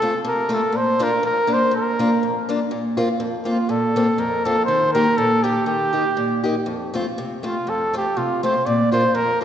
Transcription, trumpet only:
0.00 0.22 A4 medium
0.27 0.56 A#4 medium
0.54 0.78 A4 medium
0.76 1.05 C5 medium
1.03 1.24 A#4 medium
1.26 1.54 A#4 medium
1.53 1.74 C5 medium
1.76 2.46 A#4 medium
3.47 3.71 F4 medium
3.70 4.21 A4 medium
4.19 4.46 A#4 medium
4.45 4.65 A4 medium
4.65 4.91 C5 medium
4.93 5.19 A#4 medium
5.17 5.45 A4 medium
5.43 5.67 G4 medium
5.67 6.40 G4 medium
7.47 7.71 F4 medium
7.69 7.95 A4 medium
7.97 8.19 G4 medium
8.18 8.44 F4 medium
8.44 8.68 C5 medium
8.66 8.92 D5 medium
8.92 9.17 C5 medium
9.15 9.42 A#4 medium

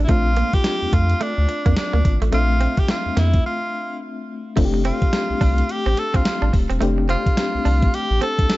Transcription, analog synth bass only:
0.09 0.43 A#1 loud
0.82 0.87 F2 soft
0.93 1.14 F2 loud
1.38 1.46 D2 medium
1.66 1.74 F2 medium
1.94 2.02 D2 medium
2.05 2.18 G#1 loud
2.22 2.30 A1 loud
2.33 2.68 A#1 loud
3.06 3.10 F2 soft
3.17 3.39 F2 medium
4.57 4.92 F1 loud
5.30 5.35 C2 soft
5.41 5.63 C2 loud
5.86 5.95 A1 medium
6.14 6.23 C2 medium
6.42 6.51 A1 loud
6.53 6.67 D#1 medium
6.70 6.79 E1 loud
6.82 7.16 F1 loud
7.55 7.59 C2 soft
7.66 7.87 C2 medium
8.11 8.19 A1 medium
8.39 8.47 C2 loud

